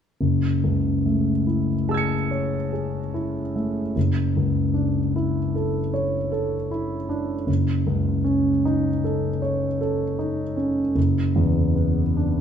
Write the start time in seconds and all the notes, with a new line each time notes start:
0.21 F#1
0.64 C#2
1.06 A3
1.47 E4
1.89 G#4 A5 E6
1.94 G#6 C#7
2.31 C#5
2.73 G#4
3.14 E4
3.56 A3
3.96 F#1
4.37 C#2
4.74 D4
5.16 E4
5.55 A4
5.94 C#5
6.32 A4
6.71 E4
7.09 D4
7.47 F#1
7.87 C#2
8.24 C#4
8.65 D#4
9.04 A4
9.42 C#5
9.81 A4
10.19 D#4
10.57 C#4
10.95 F#1
11.36 E2
11.75 B3
12.17 D4